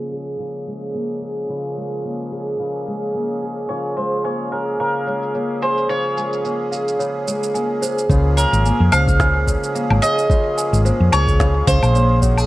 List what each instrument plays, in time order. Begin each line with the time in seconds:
Already playing: steel-string acoustic guitar C#3 G#3 A#3 F4, accordion F3 A#3 C#4 G#4
0.11 steel-string acoustic guitar G#4
0.39 steel-string acoustic guitar C#3
0.67 steel-string acoustic guitar G#3, shaker
0.82 shaker
0.94 steel-string acoustic guitar A#3, shaker
1.22 steel-string acoustic guitar G#4, shaker
1.38 shaker
1.49 steel-string acoustic guitar C#3 F4, shaker
1.55 shaker
1.59 shaker
1.65 shaker
1.68 shaker
1.73 steel-string acoustic guitar G#3, shaker
1.77 shaker
1.92 shaker
2.04 steel-string acoustic guitar A#3, shaker
2.32 steel-string acoustic guitar G#4, shaker
2.48 shaker
2.59 steel-string acoustic guitar C#3, shaker
2.87 steel-string acoustic guitar G#3, shaker
3.03 shaker
3.14 steel-string acoustic guitar A#3, shaker
3.42 steel-string acoustic guitar G#4, shaker
3.58 shaker
3.69 steel-string acoustic guitar C#3 F4, accordion F3, mandolin C#5, celesta G#5, shaker
3.97 steel-string acoustic guitar G#3, mandolin C5, celesta C5, shaker
4.13 shaker
4.24 steel-string acoustic guitar A#3, mandolin C#5, celesta G#5, shaker
4.52 steel-string acoustic guitar G#4, mandolin A#4, celesta C#5, shaker
4.68 shaker
4.80 steel-string acoustic guitar C#3, mandolin A#4, celesta F5, shaker
5.07 steel-string acoustic guitar G#3, celesta C#5, shaker
5.23 shaker
5.35 steel-string acoustic guitar A#3, celesta C#5, shaker
5.62 steel-string acoustic guitar G#4, mandolin C5, celesta G#5, shaker
5.78 shaker
5.89 steel-string acoustic guitar C#3 F4, celesta C5, mandolin C#5, shaker
6.17 steel-string acoustic guitar G#3, celesta G#5, shaker
6.33 shaker
6.44 steel-string acoustic guitar A#3, celesta C#5, shaker
6.72 steel-string acoustic guitar G#4, celesta F5, shaker
6.88 shaker
6.99 steel-string acoustic guitar C#3, celesta C#5, shaker
7.27 steel-string acoustic guitar G#3, celesta C#5, shaker
7.43 shaker
7.54 steel-string acoustic guitar A#3, celesta G#5, shaker
7.82 steel-string acoustic guitar G#4, celesta C5, shaker
7.98 shaker
8.10 fingered electric bass C#2, steel-string acoustic guitar C#3 F4, accordion F3 A#3 C#4 G#4, celesta C#5, kick, shaker
8.37 mandolin A#4, celesta C#5, shaker
8.53 fingered electric bass G#1, shaker
8.65 steel-string acoustic guitar A#3, celesta G#5, shaker
8.80 fingered electric bass F2
8.92 fingered electric bass C#2, steel-string acoustic guitar G#3, celesta C5, mandolin F5, low woodblock, shaker
9.08 kick, shaker
9.20 steel-string acoustic guitar C#3, celesta G#5, kick, snare, shaker
9.47 celesta C#5, kick, shaker
9.64 shaker
9.75 steel-string acoustic guitar A#3, celesta F5, shaker
9.90 fingered electric bass G#1, low woodblock
10.02 steel-string acoustic guitar G#4, celesta C#5, mandolin D#5, shaker
10.19 shaker
10.30 steel-string acoustic guitar C#3 F4, celesta C#5, kick, shaker
10.57 celesta G#5, shaker
10.73 fingered electric bass G#1, shaker
10.85 steel-string acoustic guitar A#3, celesta C5, shaker
11.00 fingered electric bass F2
11.12 fingered electric bass C#2, steel-string acoustic guitar G#3, mandolin C#5, celesta G#5, low woodblock, shaker
11.28 kick, shaker
11.40 steel-string acoustic guitar C#3, celesta C#5, kick, snare, shaker
11.67 fingered electric bass C#2, mandolin C5, celesta F5, kick, shaker
11.83 fingered electric bass A#1, low woodblock, shaker
11.95 steel-string acoustic guitar A#3, celesta C#5, shaker
12.22 steel-string acoustic guitar F#4, celesta C#5, kick, shaker
12.38 steel-string acoustic guitar G#4, low woodblock, shaker